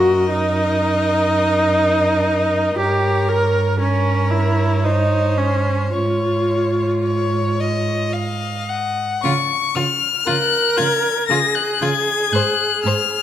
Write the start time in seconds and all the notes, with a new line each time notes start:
Already playing: F#2 F#4 A#4 D#5
0.29 D#4
2.78 G2 G4 A#4 C#5
3.28 A#4
3.80 C#4 A#4 C#5
4.31 E4
4.84 D#4 C5
5.38 C#4
5.92 G#2 F4 C#5
7.03 C#5
7.60 D#5
8.13 D#5 F5
8.69 F#5
9.22 C#3 F4 C#6
9.75 C#3 F4 F6
10.27 C#3 F4 A#4 F#6
10.77 C#3 F4 G#6
11.28 C#3 F4 G#4 A#6
11.55 F#6
11.81 C#3 F4 G#6
12.32 G#2 C5 F#6
12.83 G#2 C5 F6